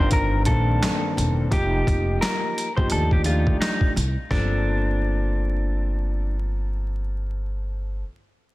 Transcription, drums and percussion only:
0.11 kick medium
0.11 closed hi-hat medium
0.45 kick medium
0.45 closed hi-hat medium
0.83 snare loud
0.83 clap medium
0.83 closed hi-hat medium
1.18 closed hi-hat medium
1.52 kick loud
1.52 closed hi-hat medium
1.87 kick medium
1.87 closed hi-hat medium
2.22 snare loud
2.22 clap medium
2.22 closed hi-hat medium
2.58 closed hi-hat medium
2.78 kick medium
2.90 closed hi-hat medium
3.11 kick medium
3.24 closed hi-hat medium
3.47 kick medium
3.62 snare loud
3.62 clap medium
3.62 closed hi-hat medium
3.81 kick medium
3.97 closed hi-hat medium
4.31 kick loud
4.31 snare medium

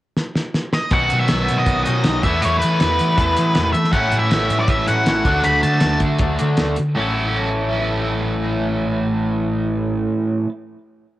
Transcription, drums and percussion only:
0.16 snare medium
0.35 snare medium
0.54 snare medium
0.73 snare medium
0.91 kick loud
0.91 closed hi-hat medium
1.10 closed hi-hat medium
1.28 snare loud
1.28 closed hi-hat medium
1.48 closed hi-hat medium
1.66 kick loud
1.66 closed hi-hat medium
1.86 closed hi-hat medium
2.04 snare loud
2.04 closed hi-hat medium
2.23 kick loud
2.23 closed hi-hat medium
2.42 closed hi-hat medium
2.62 closed hi-hat medium
2.80 snare loud
2.80 closed hi-hat medium
2.99 closed hi-hat medium
3.18 kick loud
3.18 closed hi-hat medium
3.37 closed hi-hat medium
3.55 snare loud
3.55 closed hi-hat medium
3.74 closed hi-hat medium
3.84 snare soft
3.93 kick loud
3.93 closed hi-hat medium
4.12 closed hi-hat medium
4.31 snare loud
4.31 closed hi-hat medium
4.50 closed hi-hat medium
4.68 kick loud
4.68 closed hi-hat medium
4.88 closed hi-hat medium
5.06 snare medium
5.06 closed hi-hat medium
5.25 kick loud
5.25 closed hi-hat medium
5.44 closed hi-hat medium
5.63 closed hi-hat medium
5.80 snare loud
5.80 closed hi-hat medium
6.00 kick medium
6.00 closed hi-hat medium
6.18 kick loud
6.18 closed hi-hat medium
6.39 closed hi-hat medium
6.57 snare loud
6.57 closed hi-hat medium
6.76 closed hi-hat medium

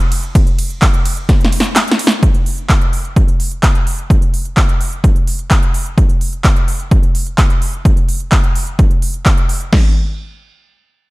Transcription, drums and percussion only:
0.00 closed hi-hat soft
0.12 open hi-hat loud
0.12 ride medium
0.23 closed hi-hat soft
0.35 kick loud
0.35 closed hi-hat loud
0.35 ride medium
0.47 closed hi-hat soft
0.59 open hi-hat loud
0.59 ride medium
0.70 closed hi-hat soft
0.82 kick loud
0.82 clap loud
0.82 closed hi-hat loud
0.82 ride medium
0.94 closed hi-hat soft
1.05 open hi-hat loud
1.05 ride medium
1.17 closed hi-hat soft
1.29 kick loud
1.29 snare medium
1.29 closed hi-hat loud
1.29 ride medium
1.41 snare medium
1.41 closed hi-hat soft
1.52 open hi-hat loud
1.52 ride medium
1.60 snare medium
1.60 closed hi-hat soft
1.76 snare medium
1.76 clap loud
1.76 closed hi-hat loud
1.76 ride medium
1.88 snare loud
1.88 closed hi-hat soft
1.99 open hi-hat loud
1.99 ride medium
2.07 snare loud
2.23 kick loud
2.23 closed hi-hat medium
2.34 closed hi-hat soft
2.46 open hi-hat loud
2.58 closed hi-hat soft
2.69 kick loud
2.69 clap loud
2.69 closed hi-hat medium
2.81 closed hi-hat soft
2.93 open hi-hat loud
3.05 closed hi-hat soft
3.16 kick loud
3.16 closed hi-hat medium
3.28 closed hi-hat soft
3.40 open hi-hat loud
3.52 closed hi-hat soft
3.63 kick loud
3.63 clap loud
3.63 closed hi-hat loud
3.75 closed hi-hat soft
3.87 open hi-hat loud
3.99 closed hi-hat soft
4.10 kick loud
4.10 closed hi-hat medium
4.22 closed hi-hat soft
4.34 open hi-hat loud
4.45 closed hi-hat soft
4.57 kick loud
4.57 clap loud
4.57 closed hi-hat medium
4.69 closed hi-hat soft
4.81 open hi-hat loud
4.92 closed hi-hat soft
5.04 kick loud
5.04 closed hi-hat medium
5.16 closed hi-hat soft
5.27 open hi-hat loud
5.39 closed hi-hat soft
5.51 kick loud
5.51 clap loud
5.51 closed hi-hat medium
5.63 closed hi-hat soft
5.74 open hi-hat loud
5.86 closed hi-hat soft
5.98 kick loud
5.98 closed hi-hat medium
6.09 closed hi-hat soft
6.21 open hi-hat loud
6.33 closed hi-hat soft
6.44 kick loud
6.44 clap loud
6.44 closed hi-hat medium
6.56 closed hi-hat soft
6.68 open hi-hat loud
6.80 closed hi-hat soft
6.91 kick loud
6.91 closed hi-hat medium
7.03 closed hi-hat soft
7.15 open hi-hat loud
7.27 closed hi-hat soft
7.38 kick loud
7.38 clap loud
7.38 closed hi-hat medium
7.50 closed hi-hat soft
7.62 open hi-hat loud
7.74 closed hi-hat soft
7.85 kick loud
7.85 closed hi-hat medium
7.97 closed hi-hat soft
8.09 open hi-hat loud
8.20 closed hi-hat soft
8.32 kick loud
8.32 clap loud
8.32 closed hi-hat medium
8.44 closed hi-hat soft
8.55 open hi-hat loud
8.67 closed hi-hat soft
8.79 kick loud
8.79 closed hi-hat medium
8.91 closed hi-hat soft
9.02 open hi-hat loud
9.14 closed hi-hat soft
9.26 kick loud
9.26 clap loud
9.26 closed hi-hat medium
9.38 closed hi-hat soft
9.49 open hi-hat loud
9.61 closed hi-hat soft
9.73 kick loud
9.73 snare loud
9.73 crash medium

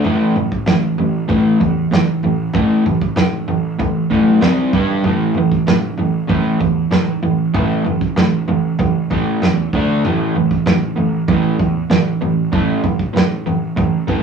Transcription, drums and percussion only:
0.05 floor tom medium
0.36 floor tom medium
0.52 kick medium
0.66 snare loud
0.66 floor tom medium
0.98 floor tom medium
1.29 kick loud
1.29 floor tom medium
1.60 kick medium
1.60 floor tom medium
1.92 snare loud
1.92 floor tom medium
2.23 floor tom medium
2.54 kick loud
2.54 floor tom loud
2.86 kick medium
2.86 floor tom medium
3.02 kick medium
3.16 snare loud
3.16 floor tom medium
3.48 floor tom medium
3.79 kick loud
3.79 floor tom medium
4.11 kick medium
4.11 floor tom medium
4.41 snare loud
4.41 floor tom medium
4.73 kick loud
4.73 floor tom medium
5.04 floor tom medium
5.35 floor tom medium
5.52 kick medium
5.67 snare loud
5.67 floor tom medium
5.98 floor tom medium
6.29 kick loud
6.29 floor tom medium
6.60 kick medium
6.60 floor tom medium
6.91 snare loud
6.91 floor tom medium
7.23 floor tom medium
7.54 kick loud
7.54 floor tom loud
7.86 floor tom medium
8.01 kick medium
8.16 snare loud
8.16 floor tom medium
8.48 floor tom medium
8.79 kick loud
8.79 floor tom medium
9.10 kick medium
9.10 floor tom medium
9.42 snare loud
9.42 floor tom medium
9.73 kick loud
9.73 floor tom medium
10.05 floor tom medium
10.35 floor tom medium
10.51 kick medium
10.66 snare loud
10.66 floor tom medium
10.97 floor tom medium
11.28 kick loud
11.28 floor tom medium
11.59 kick medium
11.59 floor tom medium
11.90 snare loud
11.90 floor tom medium
12.22 floor tom medium
12.53 kick loud
12.53 floor tom medium
12.84 kick medium
12.84 floor tom medium
12.99 kick medium
13.16 snare loud
13.16 floor tom medium
13.47 floor tom medium
13.77 kick loud
13.77 floor tom medium
14.08 kick medium
14.08 floor tom medium

